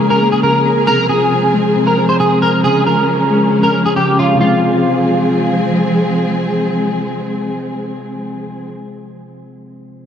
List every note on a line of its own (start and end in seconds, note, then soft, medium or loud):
0.00 0.43 C#3 medium
0.00 0.44 F3 medium
0.00 0.84 F3 medium
0.00 0.88 G#3 medium
0.00 0.86 A#3 medium
0.00 0.86 C#4 medium
0.00 4.37 G#4 medium
0.10 0.31 A#4 medium
0.22 0.88 A#3 medium
0.32 0.42 G#4 medium
0.43 0.88 C#3 medium
0.43 0.85 A#4 medium
0.65 0.88 C#4 medium
0.87 1.30 C3 medium
0.87 4.37 F3 medium
0.87 4.37 G#3 medium
0.87 2.62 C4 medium
0.87 1.08 A#4 loud
1.09 2.20 F3 medium
1.09 1.83 G#4 medium
1.32 1.75 C3 medium
1.54 2.64 G#3 medium
1.76 2.19 C3 medium
1.87 2.07 A#4 medium
1.98 2.64 C4 medium
2.09 2.19 C5 medium
2.20 2.64 C3 medium
2.20 2.40 G#4 medium
2.42 2.62 A#4 medium
2.42 2.64 C5 medium
2.64 3.07 C#3 medium
2.64 4.39 C#4 medium
2.64 2.84 G#4 loud
2.86 3.97 F3 medium
2.86 3.60 A#4 medium
3.08 3.51 C#3 medium
3.30 4.41 G#3 medium
3.52 3.95 C#3 medium
3.63 3.83 A#4 medium
3.74 4.41 C#4 medium
3.86 3.96 G#4 medium
3.96 4.41 C#3 medium
3.96 4.17 G4 medium
4.19 4.39 F4 medium
4.19 4.41 C#5 medium
4.35 8.71 C3 medium
4.39 8.75 F3 medium
4.39 8.70 F3 medium
4.39 8.70 G#3 medium
4.39 8.70 C4 medium
4.39 5.69 F4 medium
4.39 8.70 G#4 medium
4.43 8.79 G#3 medium
4.43 8.83 C4 medium